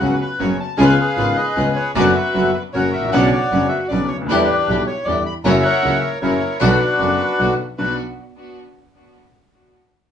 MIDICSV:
0, 0, Header, 1, 5, 480
1, 0, Start_track
1, 0, Key_signature, 2, "minor"
1, 0, Tempo, 388853
1, 958, Time_signature, 3, 2, 24, 8
1, 12485, End_track
2, 0, Start_track
2, 0, Title_t, "Bandoneon"
2, 0, Program_c, 0, 23
2, 0, Note_on_c, 0, 66, 70
2, 44, Note_on_c, 0, 69, 77
2, 142, Note_off_c, 0, 69, 0
2, 161, Note_on_c, 0, 71, 79
2, 186, Note_off_c, 0, 66, 0
2, 245, Note_off_c, 0, 71, 0
2, 263, Note_on_c, 0, 71, 87
2, 487, Note_on_c, 0, 73, 89
2, 497, Note_off_c, 0, 71, 0
2, 706, Note_off_c, 0, 73, 0
2, 742, Note_on_c, 0, 81, 92
2, 954, Note_off_c, 0, 81, 0
2, 964, Note_on_c, 0, 80, 111
2, 1004, Note_on_c, 0, 71, 74
2, 1004, Note_on_c, 0, 77, 74
2, 1192, Note_off_c, 0, 77, 0
2, 1208, Note_off_c, 0, 80, 0
2, 1211, Note_on_c, 0, 77, 94
2, 1219, Note_off_c, 0, 71, 0
2, 1238, Note_on_c, 0, 71, 69
2, 1242, Note_on_c, 0, 68, 69
2, 1676, Note_on_c, 0, 75, 97
2, 1688, Note_off_c, 0, 68, 0
2, 1688, Note_off_c, 0, 71, 0
2, 1700, Note_off_c, 0, 77, 0
2, 1706, Note_on_c, 0, 71, 74
2, 1707, Note_on_c, 0, 68, 72
2, 2123, Note_off_c, 0, 75, 0
2, 2169, Note_on_c, 0, 73, 90
2, 2363, Note_off_c, 0, 68, 0
2, 2363, Note_off_c, 0, 71, 0
2, 2388, Note_off_c, 0, 73, 0
2, 2414, Note_on_c, 0, 74, 101
2, 2451, Note_on_c, 0, 71, 76
2, 2452, Note_on_c, 0, 66, 76
2, 2631, Note_off_c, 0, 74, 0
2, 2651, Note_on_c, 0, 76, 96
2, 2676, Note_off_c, 0, 71, 0
2, 2695, Note_on_c, 0, 71, 74
2, 3101, Note_off_c, 0, 66, 0
2, 3114, Note_off_c, 0, 71, 0
2, 3133, Note_on_c, 0, 71, 78
2, 3142, Note_off_c, 0, 76, 0
2, 3239, Note_off_c, 0, 71, 0
2, 3373, Note_on_c, 0, 73, 86
2, 3396, Note_on_c, 0, 70, 61
2, 3405, Note_on_c, 0, 66, 64
2, 3594, Note_off_c, 0, 73, 0
2, 3617, Note_on_c, 0, 76, 88
2, 3830, Note_off_c, 0, 70, 0
2, 3835, Note_off_c, 0, 66, 0
2, 3851, Note_on_c, 0, 78, 106
2, 3859, Note_off_c, 0, 76, 0
2, 3875, Note_on_c, 0, 73, 78
2, 3883, Note_on_c, 0, 74, 69
2, 4073, Note_off_c, 0, 78, 0
2, 4081, Note_off_c, 0, 74, 0
2, 4099, Note_on_c, 0, 74, 93
2, 4134, Note_on_c, 0, 66, 73
2, 4533, Note_off_c, 0, 73, 0
2, 4541, Note_off_c, 0, 74, 0
2, 4550, Note_on_c, 0, 76, 89
2, 4662, Note_off_c, 0, 76, 0
2, 4783, Note_off_c, 0, 66, 0
2, 4793, Note_on_c, 0, 74, 97
2, 5034, Note_on_c, 0, 73, 88
2, 5048, Note_off_c, 0, 74, 0
2, 5145, Note_off_c, 0, 73, 0
2, 5281, Note_on_c, 0, 71, 98
2, 5309, Note_on_c, 0, 62, 70
2, 5318, Note_on_c, 0, 67, 69
2, 5952, Note_off_c, 0, 71, 0
2, 5966, Note_off_c, 0, 62, 0
2, 5971, Note_off_c, 0, 67, 0
2, 6011, Note_on_c, 0, 73, 96
2, 6231, Note_on_c, 0, 74, 99
2, 6253, Note_off_c, 0, 73, 0
2, 6458, Note_off_c, 0, 74, 0
2, 6491, Note_on_c, 0, 83, 99
2, 6596, Note_off_c, 0, 83, 0
2, 6718, Note_on_c, 0, 82, 111
2, 6738, Note_on_c, 0, 73, 83
2, 6750, Note_on_c, 0, 76, 79
2, 6941, Note_off_c, 0, 82, 0
2, 6950, Note_on_c, 0, 78, 111
2, 6963, Note_off_c, 0, 73, 0
2, 6979, Note_on_c, 0, 70, 77
2, 6981, Note_on_c, 0, 73, 75
2, 7398, Note_off_c, 0, 76, 0
2, 7398, Note_off_c, 0, 78, 0
2, 7417, Note_on_c, 0, 76, 95
2, 7529, Note_off_c, 0, 76, 0
2, 7636, Note_off_c, 0, 70, 0
2, 7637, Note_off_c, 0, 73, 0
2, 7666, Note_on_c, 0, 73, 92
2, 7686, Note_on_c, 0, 64, 67
2, 7690, Note_on_c, 0, 70, 68
2, 8115, Note_off_c, 0, 73, 0
2, 8125, Note_off_c, 0, 64, 0
2, 8127, Note_off_c, 0, 70, 0
2, 8144, Note_on_c, 0, 71, 96
2, 8152, Note_on_c, 0, 66, 68
2, 8155, Note_on_c, 0, 62, 71
2, 9305, Note_off_c, 0, 71, 0
2, 9309, Note_off_c, 0, 66, 0
2, 9310, Note_off_c, 0, 62, 0
2, 9604, Note_on_c, 0, 71, 90
2, 9827, Note_off_c, 0, 71, 0
2, 12485, End_track
3, 0, Start_track
3, 0, Title_t, "String section"
3, 0, Program_c, 1, 48
3, 0, Note_on_c, 1, 61, 51
3, 0, Note_on_c, 1, 66, 44
3, 2, Note_on_c, 1, 71, 53
3, 200, Note_off_c, 1, 61, 0
3, 201, Note_off_c, 1, 66, 0
3, 202, Note_off_c, 1, 71, 0
3, 483, Note_on_c, 1, 66, 48
3, 484, Note_on_c, 1, 71, 57
3, 485, Note_on_c, 1, 61, 56
3, 682, Note_off_c, 1, 66, 0
3, 682, Note_off_c, 1, 71, 0
3, 683, Note_off_c, 1, 61, 0
3, 959, Note_on_c, 1, 61, 84
3, 961, Note_on_c, 1, 65, 71
3, 964, Note_on_c, 1, 71, 89
3, 1160, Note_off_c, 1, 61, 0
3, 1161, Note_off_c, 1, 65, 0
3, 1163, Note_off_c, 1, 71, 0
3, 1436, Note_on_c, 1, 65, 50
3, 1438, Note_on_c, 1, 61, 49
3, 1445, Note_on_c, 1, 71, 59
3, 1639, Note_off_c, 1, 65, 0
3, 1641, Note_off_c, 1, 61, 0
3, 1644, Note_off_c, 1, 71, 0
3, 1914, Note_on_c, 1, 61, 49
3, 1917, Note_on_c, 1, 71, 56
3, 1919, Note_on_c, 1, 65, 47
3, 2117, Note_off_c, 1, 61, 0
3, 2119, Note_off_c, 1, 71, 0
3, 2120, Note_off_c, 1, 65, 0
3, 2409, Note_on_c, 1, 62, 88
3, 2409, Note_on_c, 1, 66, 72
3, 2409, Note_on_c, 1, 71, 91
3, 2606, Note_off_c, 1, 66, 0
3, 2606, Note_off_c, 1, 71, 0
3, 2607, Note_off_c, 1, 62, 0
3, 2895, Note_on_c, 1, 62, 52
3, 2900, Note_on_c, 1, 71, 52
3, 2901, Note_on_c, 1, 66, 43
3, 3091, Note_off_c, 1, 62, 0
3, 3093, Note_off_c, 1, 71, 0
3, 3094, Note_off_c, 1, 66, 0
3, 3376, Note_on_c, 1, 61, 45
3, 3378, Note_on_c, 1, 66, 49
3, 3380, Note_on_c, 1, 70, 54
3, 3573, Note_off_c, 1, 61, 0
3, 3574, Note_off_c, 1, 66, 0
3, 3575, Note_off_c, 1, 70, 0
3, 3849, Note_on_c, 1, 62, 75
3, 3850, Note_on_c, 1, 61, 80
3, 3857, Note_on_c, 1, 71, 84
3, 4050, Note_off_c, 1, 61, 0
3, 4050, Note_off_c, 1, 62, 0
3, 4054, Note_off_c, 1, 71, 0
3, 4333, Note_on_c, 1, 61, 46
3, 4333, Note_on_c, 1, 62, 41
3, 4337, Note_on_c, 1, 71, 53
3, 4532, Note_off_c, 1, 61, 0
3, 4533, Note_off_c, 1, 62, 0
3, 4534, Note_off_c, 1, 71, 0
3, 4807, Note_on_c, 1, 61, 53
3, 4812, Note_on_c, 1, 62, 48
3, 4816, Note_on_c, 1, 71, 57
3, 5009, Note_off_c, 1, 61, 0
3, 5011, Note_off_c, 1, 62, 0
3, 5013, Note_off_c, 1, 71, 0
3, 5298, Note_on_c, 1, 62, 82
3, 5303, Note_on_c, 1, 64, 76
3, 5308, Note_on_c, 1, 67, 89
3, 5494, Note_off_c, 1, 62, 0
3, 5496, Note_off_c, 1, 64, 0
3, 5499, Note_off_c, 1, 67, 0
3, 5776, Note_on_c, 1, 62, 46
3, 5782, Note_on_c, 1, 64, 48
3, 5783, Note_on_c, 1, 67, 57
3, 5971, Note_off_c, 1, 62, 0
3, 5974, Note_off_c, 1, 64, 0
3, 5975, Note_off_c, 1, 67, 0
3, 6254, Note_on_c, 1, 62, 51
3, 6256, Note_on_c, 1, 67, 58
3, 6257, Note_on_c, 1, 64, 47
3, 6448, Note_off_c, 1, 62, 0
3, 6449, Note_off_c, 1, 67, 0
3, 6450, Note_off_c, 1, 64, 0
3, 6716, Note_on_c, 1, 58, 83
3, 6723, Note_on_c, 1, 64, 76
3, 6724, Note_on_c, 1, 66, 88
3, 6919, Note_off_c, 1, 58, 0
3, 6922, Note_off_c, 1, 64, 0
3, 6923, Note_off_c, 1, 66, 0
3, 7210, Note_on_c, 1, 58, 55
3, 7213, Note_on_c, 1, 64, 49
3, 7216, Note_on_c, 1, 66, 54
3, 7404, Note_off_c, 1, 58, 0
3, 7406, Note_off_c, 1, 64, 0
3, 7407, Note_off_c, 1, 66, 0
3, 7683, Note_on_c, 1, 58, 54
3, 7688, Note_on_c, 1, 64, 48
3, 7691, Note_on_c, 1, 66, 55
3, 7880, Note_off_c, 1, 58, 0
3, 7883, Note_off_c, 1, 64, 0
3, 7884, Note_off_c, 1, 66, 0
3, 8154, Note_on_c, 1, 59, 85
3, 8155, Note_on_c, 1, 62, 76
3, 8158, Note_on_c, 1, 66, 97
3, 8354, Note_off_c, 1, 59, 0
3, 8355, Note_off_c, 1, 62, 0
3, 8356, Note_off_c, 1, 66, 0
3, 8639, Note_on_c, 1, 59, 51
3, 8644, Note_on_c, 1, 62, 46
3, 8645, Note_on_c, 1, 66, 54
3, 8839, Note_off_c, 1, 59, 0
3, 8841, Note_off_c, 1, 62, 0
3, 8842, Note_off_c, 1, 66, 0
3, 9124, Note_on_c, 1, 59, 49
3, 9124, Note_on_c, 1, 62, 46
3, 9130, Note_on_c, 1, 66, 58
3, 9324, Note_off_c, 1, 59, 0
3, 9324, Note_off_c, 1, 62, 0
3, 9327, Note_off_c, 1, 66, 0
3, 9601, Note_on_c, 1, 59, 57
3, 9605, Note_on_c, 1, 62, 51
3, 9608, Note_on_c, 1, 66, 59
3, 9803, Note_off_c, 1, 59, 0
3, 9805, Note_off_c, 1, 62, 0
3, 9807, Note_off_c, 1, 66, 0
3, 12485, End_track
4, 0, Start_track
4, 0, Title_t, "Grand piano"
4, 0, Program_c, 2, 0
4, 3, Note_on_c, 2, 49, 60
4, 3, Note_on_c, 2, 54, 46
4, 6, Note_on_c, 2, 37, 58
4, 13, Note_on_c, 2, 59, 42
4, 13, Note_on_c, 2, 66, 50
4, 203, Note_off_c, 2, 54, 0
4, 204, Note_off_c, 2, 37, 0
4, 205, Note_off_c, 2, 49, 0
4, 208, Note_off_c, 2, 59, 0
4, 208, Note_off_c, 2, 66, 0
4, 489, Note_on_c, 2, 54, 62
4, 492, Note_on_c, 2, 49, 51
4, 493, Note_on_c, 2, 42, 63
4, 493, Note_on_c, 2, 59, 45
4, 495, Note_on_c, 2, 66, 58
4, 687, Note_off_c, 2, 42, 0
4, 687, Note_off_c, 2, 49, 0
4, 687, Note_off_c, 2, 59, 0
4, 688, Note_off_c, 2, 66, 0
4, 690, Note_off_c, 2, 54, 0
4, 954, Note_on_c, 2, 37, 98
4, 957, Note_on_c, 2, 49, 102
4, 958, Note_on_c, 2, 56, 82
4, 961, Note_on_c, 2, 65, 89
4, 965, Note_on_c, 2, 59, 72
4, 1158, Note_off_c, 2, 37, 0
4, 1159, Note_off_c, 2, 56, 0
4, 1160, Note_off_c, 2, 49, 0
4, 1161, Note_off_c, 2, 65, 0
4, 1163, Note_off_c, 2, 59, 0
4, 1446, Note_on_c, 2, 32, 60
4, 1446, Note_on_c, 2, 49, 51
4, 1446, Note_on_c, 2, 59, 50
4, 1448, Note_on_c, 2, 56, 46
4, 1448, Note_on_c, 2, 65, 56
4, 1451, Note_on_c, 2, 44, 59
4, 1644, Note_off_c, 2, 32, 0
4, 1644, Note_off_c, 2, 49, 0
4, 1645, Note_off_c, 2, 56, 0
4, 1645, Note_off_c, 2, 59, 0
4, 1645, Note_off_c, 2, 65, 0
4, 1647, Note_off_c, 2, 44, 0
4, 1928, Note_on_c, 2, 37, 66
4, 1930, Note_on_c, 2, 49, 67
4, 1930, Note_on_c, 2, 59, 47
4, 1932, Note_on_c, 2, 56, 46
4, 1933, Note_on_c, 2, 65, 58
4, 2124, Note_off_c, 2, 37, 0
4, 2125, Note_off_c, 2, 59, 0
4, 2127, Note_off_c, 2, 56, 0
4, 2127, Note_off_c, 2, 65, 0
4, 2128, Note_off_c, 2, 49, 0
4, 2410, Note_on_c, 2, 50, 83
4, 2411, Note_on_c, 2, 59, 78
4, 2413, Note_on_c, 2, 54, 94
4, 2415, Note_on_c, 2, 42, 100
4, 2415, Note_on_c, 2, 66, 94
4, 2607, Note_off_c, 2, 50, 0
4, 2607, Note_off_c, 2, 59, 0
4, 2609, Note_off_c, 2, 42, 0
4, 2610, Note_off_c, 2, 54, 0
4, 2610, Note_off_c, 2, 66, 0
4, 2892, Note_on_c, 2, 54, 60
4, 2893, Note_on_c, 2, 50, 46
4, 2897, Note_on_c, 2, 59, 47
4, 2897, Note_on_c, 2, 66, 53
4, 2901, Note_on_c, 2, 42, 56
4, 3090, Note_off_c, 2, 50, 0
4, 3092, Note_off_c, 2, 59, 0
4, 3092, Note_off_c, 2, 66, 0
4, 3094, Note_off_c, 2, 42, 0
4, 3094, Note_off_c, 2, 54, 0
4, 3391, Note_on_c, 2, 42, 55
4, 3397, Note_on_c, 2, 49, 45
4, 3397, Note_on_c, 2, 54, 59
4, 3401, Note_on_c, 2, 58, 45
4, 3403, Note_on_c, 2, 66, 53
4, 3581, Note_off_c, 2, 42, 0
4, 3584, Note_off_c, 2, 49, 0
4, 3585, Note_off_c, 2, 54, 0
4, 3585, Note_off_c, 2, 58, 0
4, 3587, Note_off_c, 2, 66, 0
4, 3700, Note_on_c, 2, 32, 50
4, 3743, Note_off_c, 2, 32, 0
4, 3754, Note_on_c, 2, 33, 65
4, 3798, Note_on_c, 2, 34, 69
4, 3800, Note_off_c, 2, 33, 0
4, 3852, Note_off_c, 2, 34, 0
4, 3864, Note_on_c, 2, 49, 76
4, 3872, Note_on_c, 2, 54, 71
4, 3873, Note_on_c, 2, 35, 92
4, 3873, Note_on_c, 2, 59, 68
4, 3874, Note_on_c, 2, 47, 91
4, 3882, Note_on_c, 2, 62, 92
4, 4057, Note_off_c, 2, 49, 0
4, 4061, Note_off_c, 2, 54, 0
4, 4061, Note_off_c, 2, 59, 0
4, 4062, Note_off_c, 2, 35, 0
4, 4062, Note_off_c, 2, 47, 0
4, 4066, Note_off_c, 2, 62, 0
4, 4350, Note_on_c, 2, 49, 46
4, 4353, Note_on_c, 2, 54, 46
4, 4354, Note_on_c, 2, 59, 42
4, 4360, Note_on_c, 2, 62, 53
4, 4361, Note_on_c, 2, 42, 55
4, 4362, Note_on_c, 2, 30, 57
4, 4541, Note_off_c, 2, 49, 0
4, 4542, Note_off_c, 2, 54, 0
4, 4543, Note_off_c, 2, 59, 0
4, 4546, Note_off_c, 2, 42, 0
4, 4546, Note_off_c, 2, 62, 0
4, 4547, Note_off_c, 2, 30, 0
4, 4836, Note_on_c, 2, 49, 49
4, 4844, Note_on_c, 2, 62, 51
4, 4845, Note_on_c, 2, 47, 64
4, 4846, Note_on_c, 2, 35, 64
4, 4848, Note_on_c, 2, 54, 45
4, 4851, Note_on_c, 2, 59, 44
4, 5023, Note_off_c, 2, 49, 0
4, 5027, Note_off_c, 2, 62, 0
4, 5028, Note_off_c, 2, 35, 0
4, 5028, Note_off_c, 2, 47, 0
4, 5029, Note_off_c, 2, 54, 0
4, 5031, Note_off_c, 2, 59, 0
4, 5153, Note_on_c, 2, 37, 57
4, 5190, Note_off_c, 2, 37, 0
4, 5200, Note_on_c, 2, 38, 63
4, 5244, Note_off_c, 2, 38, 0
4, 5263, Note_on_c, 2, 39, 81
4, 5305, Note_off_c, 2, 39, 0
4, 5317, Note_on_c, 2, 50, 87
4, 5327, Note_on_c, 2, 64, 85
4, 5329, Note_on_c, 2, 40, 92
4, 5329, Note_on_c, 2, 52, 94
4, 5332, Note_on_c, 2, 59, 78
4, 5333, Note_on_c, 2, 55, 72
4, 5503, Note_off_c, 2, 50, 0
4, 5508, Note_off_c, 2, 64, 0
4, 5509, Note_off_c, 2, 40, 0
4, 5509, Note_off_c, 2, 52, 0
4, 5511, Note_off_c, 2, 55, 0
4, 5511, Note_off_c, 2, 59, 0
4, 5774, Note_on_c, 2, 50, 47
4, 5777, Note_on_c, 2, 35, 62
4, 5779, Note_on_c, 2, 55, 49
4, 5780, Note_on_c, 2, 47, 58
4, 5781, Note_on_c, 2, 59, 43
4, 5786, Note_on_c, 2, 64, 58
4, 5970, Note_off_c, 2, 50, 0
4, 5972, Note_off_c, 2, 35, 0
4, 5973, Note_off_c, 2, 55, 0
4, 5974, Note_off_c, 2, 47, 0
4, 5974, Note_off_c, 2, 59, 0
4, 5977, Note_off_c, 2, 64, 0
4, 6255, Note_on_c, 2, 40, 58
4, 6255, Note_on_c, 2, 52, 56
4, 6256, Note_on_c, 2, 50, 50
4, 6258, Note_on_c, 2, 55, 45
4, 6260, Note_on_c, 2, 59, 46
4, 6264, Note_on_c, 2, 64, 55
4, 6449, Note_off_c, 2, 40, 0
4, 6449, Note_off_c, 2, 50, 0
4, 6449, Note_off_c, 2, 52, 0
4, 6450, Note_off_c, 2, 55, 0
4, 6451, Note_off_c, 2, 59, 0
4, 6453, Note_off_c, 2, 64, 0
4, 6726, Note_on_c, 2, 42, 95
4, 6729, Note_on_c, 2, 58, 73
4, 6730, Note_on_c, 2, 49, 88
4, 6733, Note_on_c, 2, 54, 97
4, 6737, Note_on_c, 2, 64, 89
4, 6924, Note_off_c, 2, 42, 0
4, 6925, Note_off_c, 2, 58, 0
4, 6926, Note_off_c, 2, 49, 0
4, 6928, Note_off_c, 2, 54, 0
4, 6929, Note_off_c, 2, 64, 0
4, 7191, Note_on_c, 2, 49, 58
4, 7192, Note_on_c, 2, 58, 43
4, 7193, Note_on_c, 2, 37, 59
4, 7194, Note_on_c, 2, 64, 54
4, 7196, Note_on_c, 2, 54, 48
4, 7395, Note_off_c, 2, 49, 0
4, 7395, Note_off_c, 2, 58, 0
4, 7396, Note_off_c, 2, 37, 0
4, 7397, Note_off_c, 2, 64, 0
4, 7398, Note_off_c, 2, 54, 0
4, 7677, Note_on_c, 2, 49, 51
4, 7678, Note_on_c, 2, 54, 66
4, 7683, Note_on_c, 2, 42, 61
4, 7685, Note_on_c, 2, 58, 49
4, 7691, Note_on_c, 2, 64, 57
4, 7877, Note_off_c, 2, 49, 0
4, 7879, Note_off_c, 2, 54, 0
4, 7880, Note_off_c, 2, 42, 0
4, 7881, Note_off_c, 2, 58, 0
4, 7884, Note_off_c, 2, 64, 0
4, 8161, Note_on_c, 2, 54, 74
4, 8162, Note_on_c, 2, 35, 99
4, 8162, Note_on_c, 2, 66, 92
4, 8165, Note_on_c, 2, 47, 97
4, 8167, Note_on_c, 2, 50, 84
4, 8172, Note_on_c, 2, 59, 76
4, 8358, Note_off_c, 2, 35, 0
4, 8358, Note_off_c, 2, 54, 0
4, 8358, Note_off_c, 2, 66, 0
4, 8360, Note_off_c, 2, 47, 0
4, 8361, Note_off_c, 2, 50, 0
4, 8363, Note_off_c, 2, 59, 0
4, 8633, Note_on_c, 2, 50, 52
4, 8638, Note_on_c, 2, 59, 44
4, 8640, Note_on_c, 2, 42, 54
4, 8643, Note_on_c, 2, 30, 60
4, 8644, Note_on_c, 2, 54, 46
4, 8649, Note_on_c, 2, 66, 56
4, 8836, Note_off_c, 2, 50, 0
4, 8838, Note_off_c, 2, 59, 0
4, 8839, Note_off_c, 2, 42, 0
4, 8840, Note_off_c, 2, 30, 0
4, 8841, Note_off_c, 2, 54, 0
4, 8844, Note_off_c, 2, 66, 0
4, 9117, Note_on_c, 2, 50, 53
4, 9125, Note_on_c, 2, 54, 48
4, 9126, Note_on_c, 2, 35, 57
4, 9126, Note_on_c, 2, 47, 57
4, 9133, Note_on_c, 2, 59, 45
4, 9133, Note_on_c, 2, 66, 51
4, 9320, Note_off_c, 2, 50, 0
4, 9324, Note_off_c, 2, 54, 0
4, 9325, Note_off_c, 2, 35, 0
4, 9325, Note_off_c, 2, 47, 0
4, 9328, Note_off_c, 2, 59, 0
4, 9328, Note_off_c, 2, 66, 0
4, 9609, Note_on_c, 2, 62, 57
4, 9609, Note_on_c, 2, 66, 63
4, 9610, Note_on_c, 2, 35, 59
4, 9620, Note_on_c, 2, 59, 52
4, 9807, Note_off_c, 2, 62, 0
4, 9807, Note_off_c, 2, 66, 0
4, 9808, Note_off_c, 2, 35, 0
4, 9813, Note_off_c, 2, 59, 0
4, 12485, End_track
5, 0, Start_track
5, 0, Title_t, "Double bass"
5, 0, Program_c, 3, 43
5, 11, Note_on_c, 3, 37, 68
5, 207, Note_off_c, 3, 37, 0
5, 495, Note_on_c, 3, 30, 65
5, 688, Note_off_c, 3, 30, 0
5, 972, Note_on_c, 3, 37, 102
5, 1167, Note_off_c, 3, 37, 0
5, 1450, Note_on_c, 3, 32, 65
5, 1646, Note_off_c, 3, 32, 0
5, 1929, Note_on_c, 3, 37, 65
5, 2125, Note_off_c, 3, 37, 0
5, 2407, Note_on_c, 3, 30, 100
5, 2606, Note_off_c, 3, 30, 0
5, 2904, Note_on_c, 3, 30, 67
5, 3095, Note_off_c, 3, 30, 0
5, 3382, Note_on_c, 3, 30, 66
5, 3576, Note_off_c, 3, 30, 0
5, 3624, Note_on_c, 3, 33, 52
5, 3856, Note_off_c, 3, 33, 0
5, 3861, Note_on_c, 3, 35, 87
5, 4056, Note_off_c, 3, 35, 0
5, 4342, Note_on_c, 3, 30, 66
5, 4537, Note_off_c, 3, 30, 0
5, 4821, Note_on_c, 3, 35, 65
5, 5016, Note_off_c, 3, 35, 0
5, 5053, Note_on_c, 3, 38, 53
5, 5283, Note_off_c, 3, 38, 0
5, 5290, Note_on_c, 3, 40, 95
5, 5490, Note_off_c, 3, 40, 0
5, 5771, Note_on_c, 3, 35, 71
5, 5969, Note_off_c, 3, 35, 0
5, 6248, Note_on_c, 3, 40, 65
5, 6445, Note_off_c, 3, 40, 0
5, 6722, Note_on_c, 3, 30, 93
5, 6922, Note_off_c, 3, 30, 0
5, 7211, Note_on_c, 3, 37, 65
5, 7405, Note_off_c, 3, 37, 0
5, 7680, Note_on_c, 3, 30, 66
5, 7878, Note_off_c, 3, 30, 0
5, 8163, Note_on_c, 3, 35, 99
5, 8359, Note_off_c, 3, 35, 0
5, 8637, Note_on_c, 3, 30, 65
5, 8837, Note_off_c, 3, 30, 0
5, 9123, Note_on_c, 3, 35, 60
5, 9323, Note_off_c, 3, 35, 0
5, 9607, Note_on_c, 3, 35, 59
5, 9806, Note_off_c, 3, 35, 0
5, 12485, End_track
0, 0, End_of_file